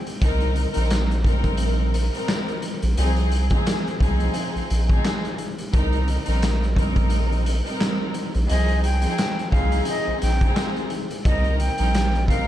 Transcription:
0.07 closed hi-hat
0.22 C2 G3 C4 D#4 A#4, kick, closed hi-hat
0.40 closed hi-hat
0.56 closed hi-hat
0.74 A#1 G3 C4 D#4 A#4, closed hi-hat
0.90 snare, clap, closed hi-hat
1.11 closed hi-hat
1.24 G3 C4 D#4 A#4, kick, closed hi-hat
1.44 kick, closed hi-hat
1.57 closed hi-hat
1.94 closed hi-hat
2.12 G3 C4 D#4 A#4, closed hi-hat
2.28 snare, clap, closed hi-hat
2.48 closed hi-hat
2.62 closed hi-hat
2.82 A#1, closed hi-hat
2.97 C2 F3 C4 D#4 G#4, closed hi-hat
3.16 closed hi-hat
3.32 closed hi-hat
3.50 F3 C4 D#4 G#4, kick, closed hi-hat
3.66 snare, clap, closed hi-hat
3.87 closed hi-hat
4.00 C2 F3 C4 D#4 G#4, kick, closed hi-hat
4.20 closed hi-hat
4.34 closed hi-hat
4.55 A#1, closed hi-hat
4.70 A#1, closed hi-hat
4.89 F3 C4 D#4 G#4, kick, closed hi-hat
5.05 snare, clap, closed hi-hat
5.25 closed hi-hat
5.38 closed hi-hat
5.58 closed hi-hat
5.74 C2 G3 C4 D#4 A#4, kick, closed hi-hat
5.92 closed hi-hat
6.08 closed hi-hat
6.26 A#1 G3 C4 D#4 A#4, closed hi-hat
6.42 snare, clap, closed hi-hat
6.63 closed hi-hat
6.76 G3 C4 D#4 A#4, kick, closed hi-hat
6.96 kick, closed hi-hat
7.10 closed hi-hat
7.32 closed hi-hat
7.46 closed hi-hat
7.64 G3 C4 D#4 A#4, closed hi-hat
7.81 snare, clap, closed hi-hat
8.14 closed hi-hat
8.35 A#1, closed hi-hat
8.49 C2 F3 C4 D#4 G#4 D#5, closed hi-hat
8.68 closed hi-hat
8.84 G5, closed hi-hat
9.02 F3 C4 D#4 G#4, closed hi-hat
9.18 snare, clap, closed hi-hat
9.39 closed hi-hat
9.52 C2 F3 C4 D#4 G#4 F5, kick, closed hi-hat
9.72 closed hi-hat
9.85 D#5, closed hi-hat
10.07 A#1
10.21 A#1 G5, snare, closed hi-hat
10.41 F3 C4 D#4 G#4, kick, closed hi-hat
10.56 snare, clap, closed hi-hat
10.76 closed hi-hat
10.90 closed hi-hat
11.11 closed hi-hat
11.25 C2 G3 C4 D#4 A#4 D#5, kick, closed hi-hat
11.44 closed hi-hat
11.59 G5, closed hi-hat
11.78 A#1 G3 C4 D#4 A#4, closed hi-hat
11.94 snare, clap, closed hi-hat
12.15 closed hi-hat
12.28 G3 C4 D#4 A#4 F5, kick, closed hi-hat

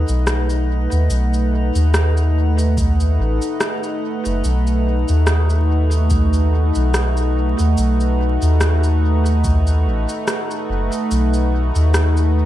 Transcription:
Already playing: A3 D#4 B4 D#5 F#5
0.08 B1, cabasa
0.27 cross-stick, cabasa
0.50 cabasa
0.92 D#2, cabasa
1.10 B1, cabasa
1.34 cabasa
1.75 D#2, cabasa
1.94 cross-stick, cabasa
2.17 cabasa
2.59 cabasa
2.77 kick, cabasa
3.00 cabasa
3.19 A1
3.42 cabasa
3.60 cross-stick, cabasa
3.83 cabasa
4.25 F#1, cabasa
4.44 B1 F#4, cabasa
4.67 cabasa
5.08 D#2, cabasa
5.27 cross-stick, cabasa
5.50 cabasa
5.91 cabasa
6.10 kick, cabasa
6.33 cabasa
6.75 B1, cabasa
6.94 cross-stick, cabasa
7.17 cabasa
7.59 D#2, cabasa
7.77 B1, cabasa
8.00 cabasa
8.42 D#2, cabasa
8.61 cross-stick, cabasa
8.84 cabasa
9.26 cabasa
9.44 D#2, kick, cabasa
9.67 cabasa
9.86 A1
10.09 cabasa
10.28 cross-stick, cabasa
10.51 cabasa
10.69 F#1
10.92 cabasa
11.11 B1, cabasa
11.34 cabasa
11.76 D#2, cabasa
11.94 cross-stick, cabasa
12.17 cabasa

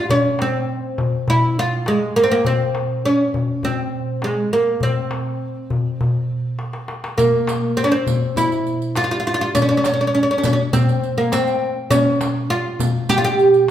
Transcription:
0.09 C#4, darbuka dum
0.39 C4, darbuka tek
0.98 darbuka dum
1.28 E4, darbuka dum
1.42 darbuka ka
1.59 F4
1.86 G#3, darbuka tek
2.16 A#3
2.23 C4
2.31 A#3
2.45 C4, darbuka dum
2.75 darbuka tek
3.05 C#4
3.34 darbuka dum
3.63 C4, darbuka dum
3.78 darbuka ka
4.22 G#3, darbuka tek
4.53 A#3
4.80 C4, darbuka dum
5.11 darbuka tek
5.26 darbuka ka
5.70 darbuka dum
6.01 darbuka dum
6.59 darbuka tek
6.73 darbuka ka
6.88 darbuka tek
7.04 darbuka ka
7.18 A#3, riq, darbuka dum
7.47 riq, darbuka tek
7.63 darbuka ka
7.77 C4
7.84 C#4
7.92 C4
8.07 riq, darbuka dum
8.36 E4, riq, darbuka dum
8.52 riq
8.67 riq
8.82 riq
8.96 F4, riq, darbuka tek
9.04 F4
9.11 F4, riq
9.20 F4
9.27 F4
9.34 F4
9.41 F4
9.55 C#4, riq, darbuka dum
9.62 C#4
9.69 C#4
9.77 C#4
9.84 C#4, riq, darbuka tek
9.94 C#4
10.00 C#4, darbuka ka
10.07 C#4
10.15 C#4
10.23 C#4
10.31 C#4
10.38 C#4
10.43 C#4, riq, darbuka dum
10.53 C#4
10.73 C4, riq, darbuka dum
10.89 riq
11.03 riq
11.18 A#3, riq
11.32 C4, riq, darbuka tek
11.47 riq
11.90 C#4, riq, darbuka dum
12.21 riq, darbuka tek
12.36 darbuka ka
12.50 F4
12.80 riq, darbuka dum
13.09 G4, riq, darbuka dum
13.18 F4
13.24 G4, riq
13.39 riq
13.54 riq

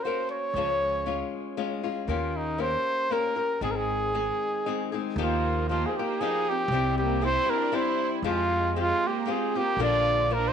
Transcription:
0.03 A#3 C#4 F#4 A#4 C5
0.31 C#5
0.53 C#2 C#3 F3 G#3 C#4 F4
0.58 C#5
1.06 G#3 C#4 F4 C#5
1.57 G#3 C#4 F4 C#5
1.83 G#3 C#4 F4 C#5
2.08 D#2 D#3 A#3 C#4 F4 G4 A#4
2.37 D#4
2.58 A#3 C#4 G4 A#4 C5
3.10 A#3 C#4 G4 A#4
3.36 C#4 G4 A#4
3.61 G#1 G#2 D#3 G#3 C4 D#4 G#4
3.71 A#4
3.76 G#4
4.14 G#3 C4 D#4 G#4
4.66 G#3 C4 D#4 G#4
4.92 G#3 C4 D#4 G#4
5.16 D#2 D#3 F3 A#3 D#4 G4
5.22 F4
5.69 F3 A#3 D#4 F4 G4
5.86 C4 G#4
5.96 A#3 D#4 G4
6.20 F3 A#3 D#4 G4 G#4
6.49 C4 G4
6.68 C2 C3
6.73 G3 C4 E4 G4
6.98 G4
7.04 A#3
7.21 G3 C4 E4 G4 C5
7.27 E4
7.46 C4 E4 G4 A#4
7.53 D4
7.72 G3 C4 E4 G4 C5
7.77 E4
8.22 F2 F3 G#3 C4 F4 G4
8.27 G#3 F4
8.76 G#3 C4 F4 G4
8.82 G#3
9.07 A#3 G4
9.25 G#3 C4 F4 G4
9.31 C4 G#4
9.55 C4 F4 G4
9.60 A#3
9.77 A#1 A#2 D3 F3 A#3 D4 A#4
9.82 F4 D5
10.31 F3 A#3 A#4
10.37 D4
10.48 D#4 C5

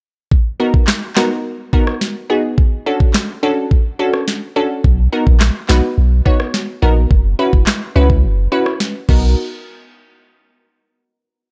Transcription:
0.32 kick
0.60 B3 D#4 F#4 A#4
0.74 kick
0.87 snare, clap
1.16 B3 D#4 F#4 A#4, snare, clap
1.73 B3 D#4 F#4 A#4, kick
1.87 cross-stick
2.01 snare
2.30 B3 D#4 F#4 G#4
2.58 kick
2.86 C#4 D4 F#4 A4
3.00 kick
3.14 snare, clap
3.43 C#4 D4 F#4 A4
3.71 kick
3.99 C#4 D4 F#4 A4
4.14 cross-stick
4.28 snare
4.56 C#4 D4 F#4 A4
4.84 B1, kick
5.12 B3 D#4 F#4 A#4
5.27 A#1, kick
5.40 snare, clap
5.69 B1 B3 D#4 F#4 B4, snare, clap
5.98 B1
6.25 B3 D#4 F#4 C#5, kick
6.40 cross-stick
6.54 snare
6.82 A#1 B3 D#4 F#4 A#4
7.11 F#1, kick
7.39 C#4 E4 F#4 B4
7.53 F#1, kick
7.67 snare, clap
7.96 C#2 C#4 E4 F#4 B4
8.10 kick
8.24 F#1
8.52 C#4 E4 F#4 B4
8.66 cross-stick
8.80 snare
9.09 B1 B3 D#4 F#4 A#4, kick, crash

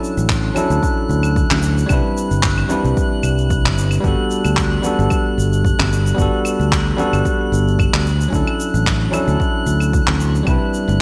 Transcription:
Already playing: F#3 C#4 D4 E4 A4 F#6
0.04 shaker
0.17 A1, shaker
0.29 kick, clap, shaker
0.54 F#3 C#4 D4 E4 A4, low conga, claves, shaker
0.70 D2, shaker
0.83 kick, shaker
1.09 D2, shaker
1.23 claves, shaker
1.36 kick, shaker
1.51 D2, clap, low conga
1.62 shaker
1.78 shaker
1.86 C2 G3 C4 D4, kick, claves, shaker
1.92 E4 B4
2.17 shaker
2.31 G1, shaker
2.43 kick, clap, shaker
2.58 claves
2.69 G3 C4 D4 E4 B4, low conga, shaker
2.85 C2, shaker
2.97 kick, shaker
3.23 C2, claves, shaker
3.38 shaker
3.50 kick, shaker
3.65 G1, clap
3.78 shaker
3.91 claves, shaker
4.00 G1 G3 B3 D4, kick, shaker
4.06 F#4 A4
4.31 shaker
4.45 D2, claves, shaker
4.57 kick, clap, shaker
4.82 G3 B3 D4 F#4 A4, low conga, shaker
4.99 G1, shaker
5.10 kick, claves, shaker
5.38 G1, shaker
5.53 shaker
5.65 kick, shaker
5.79 G1, clap, low conga, claves
5.93 shaker
6.07 shaker
6.14 G1 G3 B3 D4, kick
6.19 F#4 A4, shaker
6.45 claves, shaker
6.60 D2, shaker
6.72 kick, clap, shaker
6.97 G3 B3 D4 F#4 A4, low conga, shaker
7.13 G1, claves, shaker
7.25 kick, shaker
7.52 G1, shaker
7.68 shaker
7.79 kick, claves, shaker
7.94 D2, clap
8.06 shaker
8.21 shaker
8.28 F#3 C#4 D4
8.32 D2 E4 A4, kick, shaker
8.47 claves
8.60 shaker
8.74 A1, shaker
8.86 kick, clap, shaker
9.10 F#3 C#4 D4 E4 A4, low conga, claves, shaker
9.28 D2, shaker
9.40 kick, shaker
9.66 D2, shaker
9.80 claves, shaker
9.93 kick, shaker
10.07 D2, clap, low conga
10.20 shaker
10.35 shaker
10.43 C2 G3 C4 D4, kick, claves, shaker
10.49 E4 B4
10.74 shaker
10.88 G1, high conga, shaker

